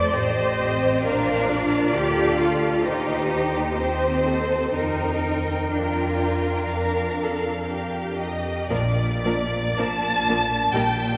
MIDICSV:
0, 0, Header, 1, 6, 480
1, 0, Start_track
1, 0, Key_signature, -2, "major"
1, 0, Tempo, 904977
1, 555, Time_signature, 4, 2, 24, 8
1, 1995, Tempo, 986842
1, 4395, Tempo, 1084991
1, 4875, Tempo, 956938
1, 5573, End_track
2, 0, Start_track
2, 0, Title_t, "Violin section"
2, 0, Program_c, 0, 48
2, 0, Note_on_c, 0, 74, 61
2, 77, Note_off_c, 0, 74, 0
2, 81, Note_on_c, 0, 72, 58
2, 312, Note_off_c, 0, 72, 0
2, 318, Note_on_c, 0, 75, 52
2, 555, Note_on_c, 0, 77, 53
2, 557, Note_off_c, 0, 75, 0
2, 1031, Note_off_c, 0, 77, 0
2, 1037, Note_on_c, 0, 77, 57
2, 1499, Note_off_c, 0, 77, 0
2, 1509, Note_on_c, 0, 75, 54
2, 1986, Note_off_c, 0, 75, 0
2, 1993, Note_on_c, 0, 75, 48
2, 2458, Note_off_c, 0, 75, 0
2, 2469, Note_on_c, 0, 79, 51
2, 3418, Note_off_c, 0, 79, 0
2, 3439, Note_on_c, 0, 77, 53
2, 4136, Note_on_c, 0, 75, 62
2, 4144, Note_off_c, 0, 77, 0
2, 4372, Note_off_c, 0, 75, 0
2, 4393, Note_on_c, 0, 74, 77
2, 4873, Note_off_c, 0, 74, 0
2, 4873, Note_on_c, 0, 81, 105
2, 5354, Note_on_c, 0, 79, 88
2, 5358, Note_off_c, 0, 81, 0
2, 5573, Note_off_c, 0, 79, 0
2, 5573, End_track
3, 0, Start_track
3, 0, Title_t, "Violin section"
3, 0, Program_c, 1, 48
3, 0, Note_on_c, 1, 69, 59
3, 0, Note_on_c, 1, 72, 65
3, 55, Note_off_c, 1, 72, 0
3, 60, Note_off_c, 1, 69, 0
3, 79, Note_on_c, 1, 67, 54
3, 82, Note_on_c, 1, 75, 54
3, 547, Note_off_c, 1, 67, 0
3, 554, Note_on_c, 1, 74, 61
3, 555, Note_on_c, 1, 65, 64
3, 558, Note_off_c, 1, 75, 0
3, 796, Note_off_c, 1, 65, 0
3, 797, Note_on_c, 1, 70, 54
3, 1035, Note_off_c, 1, 70, 0
3, 1035, Note_on_c, 1, 69, 53
3, 1507, Note_off_c, 1, 74, 0
3, 1507, Note_on_c, 1, 72, 51
3, 1508, Note_off_c, 1, 69, 0
3, 1509, Note_on_c, 1, 67, 54
3, 1744, Note_off_c, 1, 67, 0
3, 1750, Note_on_c, 1, 67, 57
3, 1985, Note_off_c, 1, 72, 0
3, 1991, Note_off_c, 1, 67, 0
3, 2006, Note_on_c, 1, 67, 50
3, 2006, Note_on_c, 1, 72, 48
3, 2234, Note_on_c, 1, 69, 55
3, 2235, Note_off_c, 1, 67, 0
3, 2470, Note_off_c, 1, 69, 0
3, 2474, Note_off_c, 1, 72, 0
3, 2476, Note_on_c, 1, 70, 45
3, 2478, Note_off_c, 1, 70, 0
3, 2478, Note_on_c, 1, 70, 48
3, 2906, Note_off_c, 1, 70, 0
3, 2951, Note_on_c, 1, 65, 56
3, 3418, Note_off_c, 1, 65, 0
3, 3444, Note_on_c, 1, 70, 69
3, 3678, Note_off_c, 1, 70, 0
3, 3679, Note_on_c, 1, 69, 55
3, 3905, Note_on_c, 1, 67, 55
3, 3909, Note_off_c, 1, 69, 0
3, 4383, Note_off_c, 1, 67, 0
3, 4396, Note_on_c, 1, 62, 57
3, 4397, Note_on_c, 1, 70, 61
3, 4431, Note_off_c, 1, 62, 0
3, 4432, Note_off_c, 1, 70, 0
3, 4643, Note_on_c, 1, 70, 46
3, 4644, Note_on_c, 1, 62, 47
3, 4678, Note_off_c, 1, 70, 0
3, 4679, Note_off_c, 1, 62, 0
3, 4873, Note_on_c, 1, 70, 55
3, 4874, Note_on_c, 1, 62, 51
3, 4913, Note_off_c, 1, 70, 0
3, 4914, Note_off_c, 1, 62, 0
3, 5126, Note_on_c, 1, 70, 46
3, 5127, Note_on_c, 1, 62, 47
3, 5166, Note_off_c, 1, 70, 0
3, 5167, Note_off_c, 1, 62, 0
3, 5355, Note_on_c, 1, 63, 59
3, 5356, Note_on_c, 1, 67, 51
3, 5396, Note_off_c, 1, 63, 0
3, 5397, Note_off_c, 1, 67, 0
3, 5573, End_track
4, 0, Start_track
4, 0, Title_t, "Cello section"
4, 0, Program_c, 2, 48
4, 315, Note_on_c, 2, 60, 68
4, 538, Note_off_c, 2, 60, 0
4, 556, Note_on_c, 2, 62, 76
4, 1035, Note_off_c, 2, 62, 0
4, 1036, Note_on_c, 2, 67, 82
4, 1272, Note_off_c, 2, 67, 0
4, 1272, Note_on_c, 2, 65, 67
4, 1508, Note_off_c, 2, 65, 0
4, 1510, Note_on_c, 2, 63, 75
4, 1994, Note_on_c, 2, 60, 71
4, 1996, Note_off_c, 2, 63, 0
4, 2463, Note_on_c, 2, 63, 72
4, 2468, Note_off_c, 2, 60, 0
4, 2938, Note_off_c, 2, 63, 0
4, 2946, Note_on_c, 2, 62, 55
4, 4141, Note_off_c, 2, 62, 0
4, 4390, Note_on_c, 2, 46, 67
4, 4817, Note_off_c, 2, 46, 0
4, 4868, Note_on_c, 2, 46, 68
4, 5299, Note_off_c, 2, 46, 0
4, 5352, Note_on_c, 2, 46, 74
4, 5573, Note_off_c, 2, 46, 0
4, 5573, End_track
5, 0, Start_track
5, 0, Title_t, "Viola section"
5, 0, Program_c, 3, 48
5, 0, Note_on_c, 3, 74, 68
5, 75, Note_off_c, 3, 74, 0
5, 79, Note_on_c, 3, 72, 72
5, 557, Note_off_c, 3, 72, 0
5, 561, Note_on_c, 3, 70, 59
5, 794, Note_off_c, 3, 70, 0
5, 802, Note_on_c, 3, 65, 59
5, 1508, Note_on_c, 3, 67, 56
5, 1510, Note_off_c, 3, 65, 0
5, 1995, Note_off_c, 3, 67, 0
5, 2002, Note_on_c, 3, 72, 61
5, 2472, Note_off_c, 3, 72, 0
5, 2479, Note_on_c, 3, 70, 53
5, 4149, Note_off_c, 3, 70, 0
5, 4396, Note_on_c, 3, 58, 60
5, 4397, Note_on_c, 3, 53, 58
5, 4432, Note_off_c, 3, 53, 0
5, 4432, Note_off_c, 3, 58, 0
5, 4641, Note_on_c, 3, 53, 48
5, 4641, Note_on_c, 3, 58, 50
5, 4676, Note_off_c, 3, 58, 0
5, 4677, Note_off_c, 3, 53, 0
5, 4876, Note_on_c, 3, 53, 55
5, 4876, Note_on_c, 3, 58, 52
5, 4916, Note_off_c, 3, 53, 0
5, 4917, Note_off_c, 3, 58, 0
5, 5130, Note_on_c, 3, 53, 54
5, 5130, Note_on_c, 3, 58, 51
5, 5170, Note_off_c, 3, 53, 0
5, 5170, Note_off_c, 3, 58, 0
5, 5361, Note_on_c, 3, 55, 57
5, 5364, Note_on_c, 3, 58, 58
5, 5402, Note_off_c, 3, 55, 0
5, 5404, Note_off_c, 3, 58, 0
5, 5573, End_track
6, 0, Start_track
6, 0, Title_t, "Double bass section"
6, 0, Program_c, 4, 48
6, 0, Note_on_c, 4, 41, 63
6, 55, Note_off_c, 4, 41, 0
6, 73, Note_on_c, 4, 33, 58
6, 544, Note_off_c, 4, 33, 0
6, 555, Note_on_c, 4, 34, 56
6, 1032, Note_on_c, 4, 38, 56
6, 1035, Note_off_c, 4, 34, 0
6, 1497, Note_off_c, 4, 38, 0
6, 1512, Note_on_c, 4, 39, 55
6, 2468, Note_on_c, 4, 41, 54
6, 2470, Note_off_c, 4, 39, 0
6, 3418, Note_off_c, 4, 41, 0
6, 3436, Note_on_c, 4, 41, 52
6, 4271, Note_off_c, 4, 41, 0
6, 4394, Note_on_c, 4, 34, 70
6, 4819, Note_off_c, 4, 34, 0
6, 4878, Note_on_c, 4, 34, 70
6, 5304, Note_off_c, 4, 34, 0
6, 5359, Note_on_c, 4, 34, 65
6, 5573, Note_off_c, 4, 34, 0
6, 5573, End_track
0, 0, End_of_file